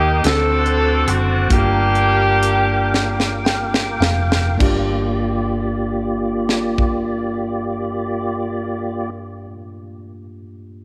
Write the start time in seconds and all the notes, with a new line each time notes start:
Already playing: D#2 D#3 A#3 D#4 G4 A#4 D#5 G5 D#6
0.23 D2 D3 C4 D4 F#4 G#4 A4 C5 F#5 A5 D6, snare, closed hi-hat
0.32 A4
0.66 closed hi-hat
1.07 F#1 F#4, closed hi-hat
1.50 G1 G2 A#3 D4 F4 F#4 G4 A#4 F5 G5, kick, closed hi-hat
1.59 G4
1.95 closed hi-hat
2.43 closed hi-hat
2.94 snare
3.20 snare
3.45 G5, snare
3.74 snare
4.00 F1 F5, snare
4.32 snare
4.58 G1 G2 A#3 D4 F4 G4 D5, kick, crash
4.63 G4
6.49 snare
6.78 kick